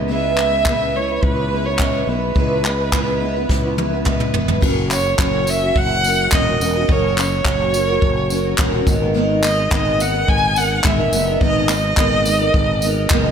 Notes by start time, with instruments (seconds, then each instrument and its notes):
Already playing: fretless electric bass C#2
0.08 steel-string acoustic guitar C#3 G#3 B3 E4 B4, violin E5
0.37 steel-string acoustic guitar G#3 B3 E4 B4, clap
0.65 steel-string acoustic guitar C#3 G#3 B3 E4 B4, kick, clap
0.94 steel-string acoustic guitar G#3 B3 E4 B4, violin C#5
1.08 steel-string acoustic guitar B3 E4 B4
1.23 fretless electric bass C#2, violin B4, kick
1.36 steel-string acoustic guitar B3 E4 B4
1.50 steel-string acoustic guitar G#3 B3 E4 B4
1.65 steel-string acoustic guitar B3 E4 B4, violin C#5
1.79 steel-string acoustic guitar C#3 G#3 B3 E4 B4, kick, clap
2.07 fretless electric bass B1, steel-string acoustic guitar G#3 B3 E4 B4, violin B4
2.35 fretless electric bass C#2, steel-string acoustic guitar C#3 G#3 B3 E4 B4, kick
2.63 steel-string acoustic guitar G#3 B3 E4 B4, clap
2.92 steel-string acoustic guitar C#3 G#3 B3 E4 B4, kick, clap
3.19 steel-string acoustic guitar G#3 B3 E4 B4
3.34 steel-string acoustic guitar B3 E4 B4
3.49 fretless electric bass C#2, kick, snare
3.62 steel-string acoustic guitar B3 E4 B4
3.77 steel-string acoustic guitar G#3 B3 E4 B4, high tom
3.91 steel-string acoustic guitar B3 E4 B4
4.04 steel-string acoustic guitar C#3 G#3 B3 E4 B4, kick, clap, mid tom
4.20 mid tom
4.33 fretless electric bass E1, steel-string acoustic guitar G#3 B3 E4 B4, floor tom
4.48 floor tom
4.61 fretless electric bass F#1, steel-string acoustic guitar F#3 C#4 F#4 A#4, kick, crash
4.89 steel-string acoustic guitar F#3 C#4 F#4 A#4, violin C#5, clap, tambourine
5.19 fretless electric bass F#1, steel-string acoustic guitar F#3 C#4 F#4 A#4, violin C#5, kick, clap
5.47 steel-string acoustic guitar F#3 C#4 F#4 A#4, violin E5, tambourine
5.61 steel-string acoustic guitar C#4 F#4 A#4
5.75 fretless electric bass F#1, violin F#5, kick
6.03 steel-string acoustic guitar F#3 C#4 F#4 A#4, tambourine
6.31 fretless electric bass E1, steel-string acoustic guitar F#3 C#4 F#4 A#4, violin D#5, kick, clap
6.46 steel-string acoustic guitar C#4 F#4 A#4
6.59 fretless electric bass E1, steel-string acoustic guitar F#3 C#4 F#4 A#4, tambourine
6.74 steel-string acoustic guitar C#4 F#4 A#4
6.88 fretless electric bass F#1, steel-string acoustic guitar F#3 C#4 F#4 A#4, violin C#5, kick
7.15 steel-string acoustic guitar F#3 C#4 F#4 A#4, clap, tambourine
7.20 violin C#5
7.45 fretless electric bass F#1, steel-string acoustic guitar F#3 C#4 F#4 A#4, kick, clap
7.73 steel-string acoustic guitar F#3 C#4 F#4 A#4, tambourine
7.87 steel-string acoustic guitar C#4 F#4 A#4
8.02 fretless electric bass F#1, kick
8.29 steel-string acoustic guitar F#3 C#4 F#4 A#4, tambourine
8.58 fretless electric bass E1, steel-string acoustic guitar F#3 C#4 F#4 A#4, kick, clap
8.72 steel-string acoustic guitar C#4 F#4 A#4
8.85 fretless electric bass G#1, steel-string acoustic guitar G#3 B3 D#4 A#4, kick, tambourine
9.00 steel-string acoustic guitar G#3 B3 D#4 A#4
9.14 steel-string acoustic guitar G#2 D#3 G#3 B3 D#4 A#4
9.42 steel-string acoustic guitar G#3 B3 D#4 A#4, violin D#5, clap, tambourine
9.70 fretless electric bass G#1, steel-string acoustic guitar G#2 D#3 G#3 B3 D#4 A#4, violin D#5, kick, clap
9.98 steel-string acoustic guitar G#3 B3 A#4, violin F#5, tambourine
10.12 steel-string acoustic guitar G#3 B3 D#4 A#4
10.28 fretless electric bass G#1, violin G#5, kick
10.55 steel-string acoustic guitar G#3 B3 D#4 A#4, violin F#5, tambourine
10.83 fretless electric bass G#1, steel-string acoustic guitar G#2 D#3 G#3 B3 D#4 A#4, violin E5, kick, clap
10.98 steel-string acoustic guitar G#3 B3 D#4 A#4
11.12 fretless electric bass F#1, steel-string acoustic guitar G#3 B3 D#4 A#4, tambourine
11.27 steel-string acoustic guitar G#3 B3 D#4 A#4
11.41 fretless electric bass G#1, steel-string acoustic guitar G#2 D#3 G#3 B3 D#4 A#4, violin D#5, kick
11.68 steel-string acoustic guitar G#3 B3 D#4 A#4, violin D#5, clap, tambourine
11.97 fretless electric bass G#1, steel-string acoustic guitar G#2 D#3 G#3 B3 D#4 A#4, kick, clap
12.24 steel-string acoustic guitar G#3 B3 D#4 A#4, tambourine
12.39 steel-string acoustic guitar G#3 B3 D#4 A#4
12.54 fretless electric bass G#1, kick
12.82 steel-string acoustic guitar G#3 B3 D#4 A#4, tambourine
13.10 fretless electric bass F#1, steel-string acoustic guitar G#2 D#3 G#3 B3 D#4 A#4, kick, clap
13.24 steel-string acoustic guitar G#3 B3 D#4 A#4